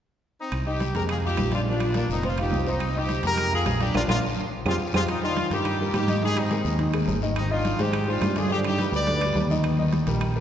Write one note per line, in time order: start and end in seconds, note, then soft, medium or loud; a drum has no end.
0.39 0.65 C4 medium
0.39 0.65 D#4 medium
0.52 0.92 C2 medium
0.52 high conga soft
0.52 high timbale medium
0.52 long guiro medium
0.52 claves medium
0.67 0.90 D#4 medium
0.67 0.94 D#4 medium
0.67 0.93 G4 medium
0.67 0.90 D#5 medium
0.67 high conga soft
0.80 high conga medium
0.80 high timbale medium
0.80 low timbale soft
0.80 short guiro medium
0.95 1.35 F2 medium
0.95 1.19 G#3 medium
0.95 1.03 G4 medium
0.95 1.19 G#4 medium
0.95 1.02 A#4 medium
0.95 high conga soft
0.95 high timbale medium
0.95 short guiro medium
1.09 1.17 F4 medium
1.09 1.17 G#4 medium
1.09 high conga soft
1.09 high timbale medium
1.09 long guiro medium
1.09 claves medium
1.24 1.51 D#4 medium
1.24 1.47 F4 medium
1.24 1.51 G4 medium
1.24 1.47 F5 medium
1.24 high conga soft
1.37 2.04 A#1 medium
1.37 high conga medium
1.37 high timbale medium
1.37 low timbale medium
1.37 short guiro medium
1.37 claves medium
1.52 1.64 D4 medium
1.52 1.60 D4 medium
1.52 1.60 F4 medium
1.52 1.64 D5 medium
1.52 high conga medium
1.52 high timbale medium
1.52 short guiro medium
1.67 1.90 F3 medium
1.67 1.94 A#3 medium
1.67 1.94 D4 medium
1.67 1.90 F4 medium
1.67 high conga soft
1.67 long guiro medium
1.80 high conga soft
1.80 high timbale medium
1.80 claves medium
1.94 2.18 A#3 medium
1.94 2.09 A#3 medium
1.94 2.09 D4 medium
1.94 2.19 A#4 medium
1.94 high conga medium
1.94 high timbale medium
1.94 low timbale soft
1.94 short guiro medium
2.09 2.49 F1 medium
2.09 2.23 C4 medium
2.09 2.24 D#4 medium
2.09 high conga soft
2.09 short guiro medium
2.23 2.35 C4 medium
2.23 2.38 C4 medium
2.23 2.38 F4 medium
2.23 2.36 C5 medium
2.23 high conga soft
2.23 high timbale medium
2.23 long guiro medium
2.37 2.65 D#4 medium
2.37 2.61 F4 medium
2.37 2.65 G4 medium
2.37 2.62 F5 medium
2.37 high conga soft
2.37 high timbale medium
2.37 claves medium
2.51 3.18 C2 medium
2.51 high conga medium
2.51 low timbale medium
2.51 short guiro medium
2.67 2.90 C4 medium
2.67 2.96 C4 medium
2.67 2.96 D#4 medium
2.67 2.90 C5 medium
2.67 short guiro medium
2.80 high conga soft
2.80 high timbale medium
2.80 long guiro medium
2.80 claves medium
2.95 3.18 D#4 medium
2.95 3.24 D#4 medium
2.95 3.24 G4 medium
2.95 3.18 D#5 medium
2.95 high conga soft
3.09 high conga medium
3.09 high timbale medium
3.09 low timbale soft
3.09 short guiro medium
3.23 3.63 F2 medium
3.23 3.47 G#3 medium
3.23 3.51 G4 medium
3.23 3.47 G#4 medium
3.23 3.51 A#4 loud
3.23 high conga soft
3.23 high timbale medium
3.23 short guiro medium
3.37 high conga soft
3.37 high timbale medium
3.37 long guiro medium
3.37 claves medium
3.52 3.75 F4 medium
3.52 3.79 F4 medium
3.52 3.79 G#4 medium
3.52 3.76 F5 medium
3.52 high conga soft
3.66 3.92 A#1 medium
3.66 high conga medium
3.66 high timbale medium
3.66 low timbale medium
3.66 short guiro medium
3.66 claves medium
3.80 3.92 D4 medium
3.80 3.94 D4 medium
3.80 3.94 G4 medium
3.80 3.92 D5 medium
3.80 high conga medium
3.80 high timbale medium
3.80 short guiro medium
3.94 4.05 A#1 medium
3.94 4.01 A#3 medium
3.94 4.02 D4 medium
3.94 4.04 D4 medium
3.94 4.02 F4 medium
3.94 4.04 F4 medium
3.94 4.04 A#4 medium
3.94 high conga medium
3.94 high timbale medium
3.94 long guiro medium
3.94 claves medium
4.08 4.19 A#1 medium
4.08 4.16 A#3 medium
4.08 4.18 D4 medium
4.08 4.16 D4 medium
4.08 4.18 F4 medium
4.08 4.16 F4 medium
4.08 4.18 A#4 medium
4.08 high conga medium
4.08 high timbale medium
4.08 long guiro medium
4.08 claves medium
4.65 4.76 F2 medium
4.65 4.73 G#3 medium
4.65 4.73 C4 medium
4.65 4.75 F4 medium
4.65 4.73 F4 medium
4.65 4.75 G4 medium
4.65 4.75 G#4 medium
4.65 high conga medium
4.65 high timbale medium
4.65 long guiro medium
4.65 claves medium
4.94 5.05 F2 medium
4.94 5.01 G#3 medium
4.94 5.02 C4 medium
4.94 5.04 F4 medium
4.94 5.01 F4 medium
4.94 5.04 G4 medium
4.94 5.04 G#4 medium
4.94 high conga medium
4.94 high timbale medium
4.94 long guiro medium
4.94 claves medium
5.08 5.22 C4 medium
5.08 5.22 D#4 medium
5.08 high conga soft
5.08 high timbale medium
5.08 long guiro medium
5.08 claves medium
5.23 5.46 D#3 medium
5.23 5.50 D4 medium
5.23 5.47 D#4 medium
5.23 5.49 F4 medium
5.23 5.47 D#5 medium
5.23 high conga soft
5.37 high conga medium
5.37 high timbale medium
5.37 low timbale medium
5.37 short guiro medium
5.51 5.91 G2 medium
5.51 5.75 G3 medium
5.51 5.92 D#4 medium
5.51 5.92 G4 medium
5.51 5.75 G4 medium
5.51 5.75 A#4 medium
5.51 high conga soft
5.51 high timbale medium
5.51 short guiro medium
5.65 high conga soft
5.65 high timbale medium
5.65 long guiro medium
5.65 claves medium
5.79 6.04 G3 medium
5.79 6.04 G4 medium
5.79 6.04 A#4 medium
5.79 high conga soft
5.94 6.60 G#2 medium
5.94 6.21 D#4 medium
5.94 6.21 G4 medium
5.94 high conga medium
5.94 high timbale medium
5.94 low timbale medium
5.94 short guiro medium
5.94 claves medium
6.08 6.20 D#3 medium
6.08 6.20 D#4 medium
6.08 6.20 D#5 medium
6.08 high conga medium
6.08 high timbale medium
6.08 short guiro medium
6.22 6.46 D#3 medium
6.22 6.46 D#4 medium
6.22 6.36 D#4 medium
6.22 6.36 G#4 loud
6.22 6.46 D#5 medium
6.22 high conga soft
6.22 long guiro medium
6.36 6.80 C4 medium
6.36 6.80 D#4 medium
6.36 high conga soft
6.36 high timbale medium
6.36 claves medium
6.51 6.75 G#3 medium
6.51 6.75 G#4 medium
6.51 6.75 A#4 medium
6.51 high conga medium
6.51 high timbale medium
6.51 low timbale medium
6.51 short guiro medium
6.65 7.05 D#2 medium
6.65 high conga soft
6.65 short guiro medium
6.79 6.91 D#3 medium
6.79 6.92 D#4 medium
6.79 6.92 D#5 medium
6.79 high conga soft
6.79 high timbale medium
6.79 long guiro medium
6.93 7.17 G#3 medium
6.93 7.17 G#4 medium
6.93 7.17 A#4 medium
6.93 high conga soft
6.93 high timbale medium
6.93 claves medium
7.07 7.73 G#1 medium
7.07 high conga medium
7.07 low timbale medium
7.07 short guiro medium
7.22 7.46 D#3 medium
7.22 7.46 D#4 medium
7.22 7.46 D#5 medium
7.22 short guiro medium
7.36 7.50 C4 medium
7.36 7.50 D#4 medium
7.36 high conga soft
7.36 high timbale medium
7.36 long guiro medium
7.36 claves medium
7.51 7.74 D#3 medium
7.51 7.80 D4 medium
7.51 7.74 D#4 medium
7.51 7.79 F4 medium
7.51 7.75 D#5 medium
7.51 high conga soft
7.65 high conga medium
7.65 high timbale medium
7.65 low timbale medium
7.65 short guiro medium
7.79 8.19 G#2 medium
7.79 8.03 G#3 medium
7.79 8.09 D#4 medium
7.79 8.08 G4 medium
7.79 8.03 G#4 medium
7.79 8.03 C5 medium
7.79 high conga soft
7.79 high timbale medium
7.79 short guiro medium
7.93 high conga soft
7.93 high timbale medium
7.93 long guiro medium
7.93 claves medium
8.07 8.31 G#3 medium
8.07 8.35 D4 medium
8.07 8.35 F4 medium
8.07 8.31 G#4 medium
8.07 8.31 C5 medium
8.07 high conga soft
8.21 8.87 G2 medium
8.21 high conga medium
8.21 high timbale medium
8.21 low timbale medium
8.21 short guiro medium
8.21 claves medium
8.36 8.48 D3 medium
8.36 8.48 D4 medium
8.36 8.51 F4 medium
8.36 8.51 G#4 medium
8.36 8.48 D5 medium
8.36 high conga medium
8.36 high timbale medium
8.36 short guiro medium
8.50 8.74 D3 medium
8.50 8.74 D4 medium
8.50 8.58 D4 medium
8.50 8.58 G4 medium
8.50 8.74 D5 medium
8.50 high conga soft
8.50 long guiro medium
8.64 8.92 D#4 medium
8.64 8.92 G4 medium
8.64 high conga soft
8.64 high timbale medium
8.64 claves medium
8.78 9.02 G3 medium
8.78 9.02 G4 medium
8.78 9.02 B4 medium
8.78 high conga medium
8.78 high timbale medium
8.78 low timbale medium
8.78 short guiro medium
8.92 9.32 D2 medium
8.92 9.47 B4 medium
8.92 9.47 D5 medium
8.92 high conga soft
8.92 short guiro medium
9.07 9.19 D3 medium
9.07 9.19 D4 medium
9.07 9.19 D5 medium
9.07 high conga soft
9.07 high timbale medium
9.07 long guiro medium
9.21 9.45 G3 medium
9.21 9.45 G4 medium
9.21 9.45 B4 medium
9.21 high conga soft
9.21 high timbale medium
9.21 claves medium
9.35 10.01 D#2 medium
9.35 high conga medium
9.35 low timbale medium
9.35 short guiro medium
9.50 9.73 D#3 medium
9.50 9.74 D#4 medium
9.50 9.74 D#5 medium
9.50 high conga medium
9.50 short guiro medium
9.64 high conga soft
9.64 high timbale medium
9.64 long guiro medium
9.64 claves medium
9.78 10.02 D#3 medium
9.78 10.02 D#4 medium
9.78 10.02 D#5 medium
9.78 high conga soft
9.93 high conga medium
9.93 high timbale medium
9.93 low timbale soft
9.93 short guiro medium
10.07 10.40 A#1 medium
10.07 10.30 G3 medium
10.07 10.30 G4 medium
10.07 10.31 A#4 medium
10.07 high conga soft
10.07 high timbale medium
10.07 short guiro medium
10.21 high conga soft
10.21 high timbale medium
10.21 long guiro medium
10.21 claves medium
10.35 10.40 G3 medium
10.35 10.40 G4 medium
10.35 10.40 A#4 medium
10.35 high conga soft